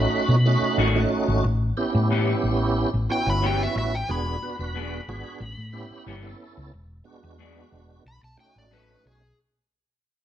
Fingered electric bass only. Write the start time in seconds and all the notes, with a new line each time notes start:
0.29 B2
0.61 muted fingered electric bass stroke
0.78 A1
1.28 G#1
1.44 A1
1.95 A2
2.44 A1
2.94 A1
3.27 G1
3.76 A1
4.09 E1
4.59 E1
5.08 G#1
5.40 A1
5.58 A2
5.91 muted fingered electric bass stroke
6.06 G1
6.57 C#2
6.73 E1
7.23 E2
7.72 E1
8.05 B1
8.23 B1
8.56 A1
9.05 B1